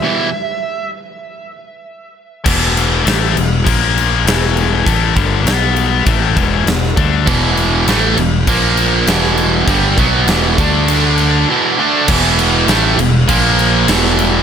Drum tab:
CC |----------------|x-x-x-x-x-x-x-x-|x-x-x-x-x-x-x-x-|x-x-x-x-x-x-x-x-|
SD |----------------|----o-------oo--|----o-------oo--|----o-------oo--|
BD |----------------|o-------o-------|o-o-----o-o---o-|o-------o-------|

CC |x-x-x-x-x-x-----|x-x-x-x-x-x-x-x-|
SD |----o-----------|----o-------oo--|
BD |o-o---o---------|o-------o-------|